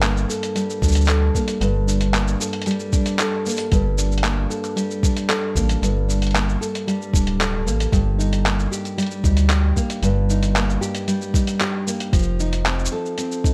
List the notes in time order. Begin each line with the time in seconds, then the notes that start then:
Already playing: G1 G2 D4
0.02 A#3, clap, closed hi-hat, shaker
0.17 shaker
0.29 A4, shaker
0.43 closed hi-hat, shaker
0.55 G3, closed hi-hat, shaker
0.70 shaker
0.82 D2 D4, kick, shaker
0.88 shaker
0.92 closed hi-hat, shaker
0.96 shaker
1.01 shaker
1.05 A4, clap, closed hi-hat, shaker
1.09 shaker
1.35 A#3, kick, shaker
1.48 closed hi-hat, shaker
1.61 G1 G2, closed hi-hat, shaker
1.87 D4, shaker
2.01 closed hi-hat, shaker
2.13 A#3, clap, closed hi-hat, shaker
2.28 shaker
2.40 A4, shaker
2.53 closed hi-hat
2.62 closed hi-hat
2.66 G3, closed hi-hat, shaker
2.71 closed hi-hat
2.80 shaker
2.93 D4, kick, shaker
3.06 closed hi-hat, shaker
3.19 A4, clap, closed hi-hat, shaker
3.46 A#3, shaker
3.49 shaker
3.51 shaker
3.53 shaker
3.56 closed hi-hat, shaker
3.59 shaker
3.72 G1 G2, kick, closed hi-hat, shaker
3.98 D4, shaker
4.12 shaker
4.18 closed hi-hat
4.24 A#3, clap, closed hi-hat, shaker
4.50 A4, shaker
4.64 closed hi-hat, shaker
4.76 G3, closed hi-hat, shaker
4.91 shaker
5.03 D4, kick, shaker
5.17 closed hi-hat, shaker
5.29 A4, clap, closed hi-hat, shaker
5.55 A1 A#3, kick, shaker
5.69 closed hi-hat, shaker
5.82 G1 G2, closed hi-hat, shaker
6.08 D4, shaker
6.22 closed hi-hat, shaker
6.27 closed hi-hat
6.31 A#3, closed hi-hat
6.36 clap, closed hi-hat, shaker
6.49 shaker
6.61 A4, shaker
6.75 closed hi-hat, shaker
6.87 G3, closed hi-hat, shaker
7.02 shaker
7.13 D1 D4, kick, shaker
7.27 closed hi-hat
7.40 A4, clap, closed hi-hat, shaker
7.66 A1 A#3, shaker
7.80 closed hi-hat, shaker
7.92 G1 G2, kick, closed hi-hat, shaker
8.19 D#4, shaker
8.33 closed hi-hat, shaker
8.45 A#3, clap, closed hi-hat, shaker
8.60 shaker
8.71 G4, shaker
8.85 closed hi-hat, shaker
8.98 G3, closed hi-hat, shaker
9.03 closed hi-hat
9.06 closed hi-hat
9.11 shaker
9.24 D2 D#4, kick, shaker
9.37 closed hi-hat, shaker
9.50 G4, clap, closed hi-hat, shaker
9.77 A#3, kick, shaker
9.90 closed hi-hat, shaker
10.02 G1 G2, closed hi-hat, shaker
10.30 D#4, shaker
10.43 closed hi-hat, shaker
10.56 A#3, clap, closed hi-hat, shaker
10.70 shaker
10.81 G4, shaker
10.95 closed hi-hat, shaker
11.08 G3, closed hi-hat, shaker
11.22 shaker
11.34 D#4, kick, shaker
11.47 closed hi-hat, shaker
11.60 G4, clap, closed hi-hat, shaker
11.87 A#3, shaker
12.00 closed hi-hat, shaker
12.13 F1 F3, kick, closed hi-hat, shaker
12.18 shaker
12.22 shaker
12.40 D#4, shaker
12.53 closed hi-hat, shaker
12.66 C4, clap, closed hi-hat, shaker
12.79 shaker
12.85 shaker
12.92 A4
13.06 shaker
13.18 C4, closed hi-hat, shaker
13.32 shaker
13.44 D#4, kick, shaker